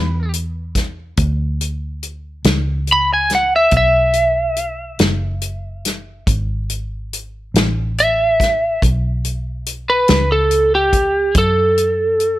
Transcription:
0.00 1.14 E2 medium
0.00 0.31 B4 medium
0.34 closed hi-hat medium
0.75 kick medium
0.75 snare soft
0.75 closed hi-hat medium
1.17 2.41 D2 medium
1.17 kick loud
1.17 closed hi-hat medium
1.61 closed hi-hat medium
2.03 closed hi-hat soft
2.44 3.68 C#2 medium
2.44 snare medium
2.44 closed hi-hat medium
2.87 closed hi-hat medium
2.92 3.11 B5 medium
3.13 3.32 G#5 medium
3.30 snare soft
3.30 closed hi-hat medium
3.35 3.53 F#5 medium
3.56 3.74 E5 medium
3.71 4.96 B1 medium
3.71 kick medium
3.71 closed hi-hat medium
3.77 6.25 E5 medium
4.13 closed hi-hat soft
4.56 closed hi-hat medium
4.99 6.23 F#1 medium
4.99 snare medium
4.99 closed hi-hat medium
5.42 closed hi-hat medium
5.85 snare soft
5.85 closed hi-hat medium
6.27 7.51 G#1 medium
6.27 kick medium
6.27 closed hi-hat medium
6.70 closed hi-hat medium
7.13 closed hi-hat soft
7.54 8.77 A1 medium
7.54 snare loud
7.54 closed hi-hat medium
7.98 8.81 E5 medium
7.98 closed hi-hat medium
8.40 kick medium
8.40 snare soft
8.40 closed hi-hat soft
8.82 10.05 B1 medium
8.82 kick medium
8.82 closed hi-hat medium
9.25 closed hi-hat soft
9.66 closed hi-hat medium
9.90 10.29 B4 medium
10.08 11.32 C#2 medium
10.08 snare medium
10.08 closed hi-hat medium
10.32 10.72 A4 medium
10.51 closed hi-hat medium
10.75 11.35 G4 medium
10.93 kick medium
10.93 closed hi-hat medium
11.35 12.39 F#2 medium
11.35 12.39 A4 medium
11.35 kick loud
11.35 closed hi-hat medium
11.78 closed hi-hat medium
12.20 closed hi-hat soft

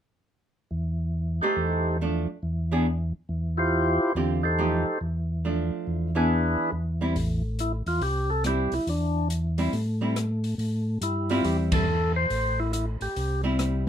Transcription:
0.71 1.41 E2 medium
1.42 1.98 A3 medium
1.42 1.97 D#4 soft
1.42 1.98 D#4 medium
1.42 1.97 G4 soft
1.42 1.98 G4 medium
1.42 1.98 A4 soft
1.42 1.98 C5 soft
1.57 2.27 E2 medium
2.01 2.26 F3 soft
2.01 2.26 A3 medium
2.01 2.26 D4 medium
2.43 3.13 E2 medium
2.72 2.85 E3 medium
2.72 2.85 B3 medium
2.72 2.86 D4 medium
2.72 2.86 G#4 medium
3.29 3.99 E2 medium
3.57 4.12 E4 medium
3.57 4.13 F4 medium
3.57 4.13 G4 medium
3.57 4.13 C5 medium
4.15 4.85 E2 medium
4.15 4.41 D3 medium
4.15 4.41 C4 medium
4.15 4.41 F4 medium
4.15 4.41 G4 medium
4.43 4.98 D#4 medium
4.43 4.98 G4 medium
4.43 4.99 A4 medium
4.43 4.99 C5 medium
4.58 4.83 F3 medium
4.58 4.83 A3 medium
4.58 4.84 D#4 medium
4.58 4.84 G4 medium
5.01 5.71 E2 medium
5.45 6.10 F3 soft
5.45 6.10 A3 soft
5.45 6.10 D4 medium
5.87 6.57 E2 medium
6.15 6.70 E3 medium
6.15 6.70 B3 medium
6.15 6.70 D4 medium
6.15 6.71 D4 medium
6.15 6.70 E4 medium
6.15 6.70 G#4 medium
6.15 6.71 G#4 medium
6.15 6.71 B4 medium
6.72 7.42 E2 medium
7.01 7.14 G3 medium
7.01 7.15 C4 medium
7.01 7.15 E4 medium
7.16 7.82 A1 medium
7.16 open hi-hat soft
7.59 7.72 E4 medium
7.59 closed hi-hat soft
7.86 8.01 E2 medium
7.86 8.03 F4 medium
7.86 open hi-hat soft
8.01 8.68 C2 medium
8.01 8.31 G4 medium
8.01 open hi-hat soft
8.30 8.44 A4 loud
8.44 8.70 G3 medium
8.44 8.70 C4 medium
8.44 8.71 E4 medium
8.44 8.74 G4 medium
8.44 cross-stick medium
8.44 closed hi-hat soft
8.72 8.80 C2 soft
8.72 8.89 E4 medium
8.72 open hi-hat soft
8.87 9.69 E2 medium
8.87 9.28 D4 medium
8.87 open hi-hat soft
9.30 closed hi-hat soft
9.58 9.72 G3 medium
9.58 9.72 C4 medium
9.58 9.72 E4 medium
9.58 open hi-hat soft
9.73 10.55 A2 medium
9.73 open hi-hat soft
10.01 10.15 G3 medium
10.01 10.15 C4 medium
10.01 10.15 E4 medium
10.16 cross-stick medium
10.16 closed hi-hat medium
10.44 open hi-hat soft
10.58 10.98 A2 medium
10.58 open hi-hat soft
11.01 11.41 G2 medium
11.01 11.31 E4 medium
11.01 closed hi-hat medium
11.29 11.85 G3 medium
11.29 11.85 C4 medium
11.29 11.85 E4 medium
11.29 11.45 F4 medium
11.29 open hi-hat soft
11.44 12.26 E2 medium
11.44 11.57 G4 medium
11.44 open hi-hat soft
11.72 12.13 A4 medium
11.72 kick medium
11.72 ride medium
12.16 12.60 C5 medium
12.30 12.97 A1 medium
12.30 open hi-hat soft
12.60 12.72 E4 medium
12.73 12.86 E4 medium
12.73 closed hi-hat soft
13.01 13.08 A1 soft
13.01 13.42 G4 medium
13.01 open hi-hat soft
13.16 13.89 C2 medium
13.16 open hi-hat soft
13.44 13.84 G3 medium
13.44 13.84 C4 medium
13.44 13.84 E4 medium
13.59 cross-stick medium
13.59 closed hi-hat medium

